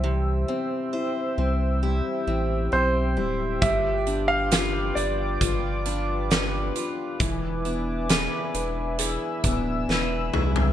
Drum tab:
HH |----------------|x-x-x-x-x-x-x-x-|x-x-x-x-x-x-----|
SD |----------------|----o-------o---|----o-------o---|
T2 |----------------|----------------|--------------o-|
FT |----------------|----------------|---------------o|
BD |----------------|o-------o-------|o---------o-----|